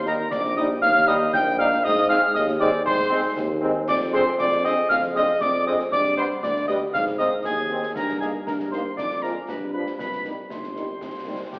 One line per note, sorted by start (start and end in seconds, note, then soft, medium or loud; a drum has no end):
0.00 0.23 D#2 medium
0.05 0.14 G3 medium
0.05 0.15 G3 medium
0.05 0.15 A#3 medium
0.05 0.15 D#4 medium
0.05 0.30 A#4 medium
0.05 0.34 A#5 medium
0.05 snare medium
0.31 0.74 A#1 medium
0.31 0.42 D5 loud
0.31 0.56 D6 loud
0.31 concert bass drum medium
0.31 snare medium
0.44 snare medium
0.57 0.67 G3 medium
0.57 0.66 G3 medium
0.57 0.67 A#3 medium
0.57 0.66 D#4 medium
0.57 0.68 D#5 loud
0.57 0.63 D#6 medium
0.57 snare medium
0.82 1.25 D#2 loud
0.82 1.10 F5 loud
0.82 1.06 F6 loud
0.82 concert bass drum loud
0.82 snare medium
0.96 snare medium
1.07 1.16 G3 medium
1.07 1.18 G3 medium
1.07 1.18 A#3 medium
1.07 1.16 D#4 medium
1.07 1.18 D#4 medium
1.07 1.33 D#5 loud
1.07 1.14 D#6 loud
1.07 snare medium
1.33 1.75 A#1 loud
1.33 1.57 G5 loud
1.33 1.39 G6 loud
1.33 concert bass drum medium
1.33 snare medium
1.58 1.67 G3 medium
1.58 1.68 G3 medium
1.58 1.68 A#3 medium
1.58 1.67 D#4 medium
1.58 1.68 D#4 medium
1.58 1.86 F5 loud
1.58 1.82 F6 loud
1.72 snare medium
1.84 2.27 G#2 loud
1.84 2.09 D#5 loud
1.84 2.08 D#6 loud
1.84 concert bass drum medium
1.84 snare medium
1.97 snare medium
2.09 2.18 G#3 medium
2.09 2.19 G#3 medium
2.09 2.19 C4 medium
2.09 2.18 C4 medium
2.09 2.19 D#4 medium
2.09 2.21 F5 loud
2.09 2.33 F6 loud
2.09 snare medium
2.34 2.77 D#2 loud
2.34 2.47 D#5 loud
2.34 2.40 D#6 loud
2.34 concert bass drum medium
2.34 snare medium
2.48 snare medium
2.60 2.69 G#3 loud
2.60 2.70 G#3 medium
2.60 2.69 C4 loud
2.60 2.70 C4 medium
2.60 2.70 D#4 medium
2.60 2.84 D5 loud
2.60 2.66 D6 loud
2.60 snare medium
2.86 3.29 G#2 loud
2.86 3.33 C5 loud
2.86 3.34 C6 loud
2.86 concert bass drum medium
2.86 snare medium
3.10 3.19 G#3 medium
3.10 3.21 G#3 medium
3.10 3.19 C4 medium
3.10 3.20 C4 medium
3.10 3.21 D#4 medium
3.37 3.79 D#2 loud
3.37 concert bass drum medium
3.37 snare medium
3.61 3.70 G#3 loud
3.61 3.71 G#3 medium
3.61 3.70 C4 loud
3.61 3.71 C4 medium
3.61 3.72 D#4 medium
3.88 4.30 F2 loud
3.88 4.00 D5 loud
3.88 3.94 D6 loud
3.88 concert bass drum medium
3.88 snare medium
3.88 crash medium
4.00 snare medium
4.11 4.21 G#3 loud
4.11 4.21 C4 medium
4.11 4.23 C4 medium
4.11 4.23 D4 medium
4.11 4.22 G#4 medium
4.11 4.26 C5 loud
4.11 4.37 C6 loud
4.11 snare medium
4.39 4.77 F2 loud
4.39 4.64 D5 loud
4.39 4.45 D6 loud
4.39 concert bass drum medium
4.39 snare medium
4.52 snare medium
4.64 4.73 G#3 medium
4.64 4.73 C4 loud
4.64 4.73 C4 medium
4.64 4.74 D4 medium
4.64 4.74 G#4 medium
4.64 4.89 D#5 loud
4.64 4.70 D#6 medium
4.64 snare medium
4.89 5.32 F2 medium
4.89 5.03 F5 loud
4.89 4.95 F6 loud
4.89 concert bass drum medium
4.89 snare medium
5.03 snare medium
5.14 5.24 G#3 medium
5.14 5.24 C4 medium
5.14 5.24 D4 medium
5.14 5.24 G#4 medium
5.14 5.43 D#5 loud
5.14 5.22 D#6 loud
5.14 snare medium
5.41 5.83 F2 medium
5.41 5.67 D5 loud
5.41 5.64 D6 loud
5.41 concert bass drum medium
5.41 snare medium
5.65 5.74 G#3 medium
5.65 5.75 C4 medium
5.65 5.76 C4 medium
5.65 5.76 D4 medium
5.65 5.75 G#4 medium
5.65 5.79 D#5 loud
5.65 5.73 D#6 loud
5.79 snare medium
5.92 6.34 G2 medium
5.92 6.16 D5 loud
5.92 6.16 D6 loud
5.92 concert bass drum medium
5.92 snare medium
6.05 snare medium
6.16 6.25 G3 medium
6.16 6.25 B3 medium
6.16 6.27 B3 medium
6.16 6.27 D4 medium
6.16 6.27 G4 medium
6.16 6.29 C5 loud
6.16 6.24 C6 medium
6.16 snare medium
6.43 6.85 D2 medium
6.43 6.67 D5 loud
6.43 6.49 D6 medium
6.43 concert bass drum medium
6.43 snare medium
6.56 snare medium
6.67 6.77 G3 medium
6.67 6.77 B3 medium
6.67 6.78 B3 medium
6.67 6.78 D4 medium
6.67 6.78 G4 medium
6.67 6.80 D#5 loud
6.67 6.74 D#6 medium
6.67 snare medium
6.93 7.36 G#2 medium
6.93 7.05 F5 loud
6.93 6.99 F6 loud
6.93 concert bass drum medium
6.93 snare medium
7.07 snare medium
7.18 7.28 D#3 medium
7.18 7.28 C4 medium
7.18 7.29 C4 medium
7.18 7.29 D#4 medium
7.18 7.30 D#5 loud
7.18 7.42 D#6 medium
7.18 snare medium
7.44 7.87 D#2 medium
7.44 7.97 G#4 loud
7.44 7.92 G#5 medium
7.44 concert bass drum medium
7.44 snare medium
7.70 7.79 D#3 medium
7.70 7.79 C4 medium
7.70 7.80 C4 medium
7.70 7.79 D#4 medium
7.83 snare medium
7.95 8.38 G2 medium
7.95 8.21 A#4 loud
7.95 8.19 A#5 medium
7.95 concert bass drum medium
7.95 snare medium
7.95 crash soft
8.09 snare medium
8.20 8.30 D#3 medium
8.20 8.30 A#3 medium
8.20 8.31 D#4 medium
8.20 8.33 G#4 medium
8.20 8.26 G#5 medium
8.20 snare medium
8.46 8.89 G2 medium
8.46 8.58 A#4 medium
8.46 8.52 A#5 medium
8.46 concert bass drum medium
8.46 snare medium
8.60 snare medium
8.71 8.81 D#3 medium
8.71 8.81 A#3 medium
8.71 8.81 D#4 medium
8.71 8.83 C5 medium
8.71 8.96 C6 medium
8.71 snare medium
8.97 9.40 F2 medium
8.97 9.21 D5 loud
8.97 9.24 D6 medium
8.97 concert bass drum medium
8.97 snare medium
9.11 snare soft
9.22 9.32 F3 medium
9.22 9.32 G#3 medium
9.22 9.33 G#3 medium
9.22 9.33 D4 medium
9.22 9.32 F4 medium
9.22 9.35 A#4 medium
9.22 9.48 A#5 medium
9.22 snare medium
9.48 9.91 G2 medium
9.48 9.72 B4 medium
9.48 9.72 B5 medium
9.48 concert bass drum medium
9.48 snare medium
9.73 9.83 F3 medium
9.73 9.83 G3 medium
9.73 9.83 D4 soft
9.73 9.84 F4 medium
9.73 9.85 B4 medium
9.73 9.97 B5 medium
9.86 snare medium
9.98 10.42 C2 medium
9.98 10.30 B4 medium
9.98 10.30 B5 medium
9.98 concert bass drum medium
9.98 snare medium
10.12 snare medium
10.25 10.34 D#3 medium
10.25 10.34 G3 medium
10.25 10.35 G3 medium
10.25 10.35 C4 soft
10.25 10.35 D#4 medium
10.25 snare medium
10.49 10.93 G1 medium
10.49 11.48 C5 medium
10.49 11.48 C6 medium
10.49 concert bass drum medium
10.49 snare medium
10.63 snare medium
10.76 10.85 D#3 medium
10.76 10.85 G3 medium
10.76 10.86 G3 soft
10.76 10.86 C4 soft
10.76 10.86 D#4 medium
10.76 snare medium
11.01 11.44 C2 medium
11.01 concert bass drum medium
11.01 snare medium
11.27 11.36 D#3 medium
11.27 11.36 G3 medium
11.27 11.37 G3 medium
11.27 11.37 C4 medium
11.27 11.37 D#4 medium
11.52 11.59 G1 medium
11.52 11.59 G4 medium
11.52 11.59 G5 medium
11.52 concert bass drum medium
11.52 snare medium